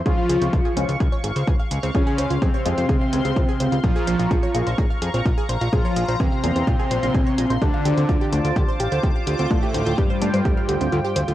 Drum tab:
HH |x-xxx-xxx-xxx-xx|x-xxx-xxx-xxx-xx|x-xxx-xxx-xxx-xx|x-xxx-xxx-xxx-xx|
BD |o---o---o---o---|o---o---o---o---|o---o---o---o---|o---o---o---o---|

HH |x-xxx-xxx-xxx-xx|x-xxx-xxx-xxx-xx|
BD |o---o---o---o---|o---o---o-------|